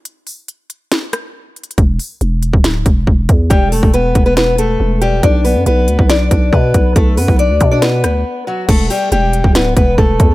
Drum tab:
CC |------------------------------------------------|------------------------------------------------|------------------------------------------------|------------------------------------------------|
HH |x-----o-----x-----x-----x-----x-----------x-x-x-|x-----o-----x-----x-----x-----x-----------x-----|x-----o-----x-----x-----x-----x-----------x-----|x-----o-----x-----x-----x-----x-----------x-----|
SD |------------------------o-----r-----------------|------------------------o-----------------------|------------------------o-----------------------|------------------------o-----------------------|
BD |------------------------------------------------|o--------------------o--------o-----o-----o-----|o--------o--------o-----------------------------|o--------------------o--------o-----o-----o-----|

CC |------------------------------------------------|x-----------------------------------------------|
HH |x-----o-----x-----x-----x-----x-----------------|x-----o-----x-----x-----x-----x-----------x-----|
SD |------------------------o-----r-----------------|------------------------o-----------------------|
BD |o--------o--------o-----------------------------|o--------------------o--------o-----o-----o-----|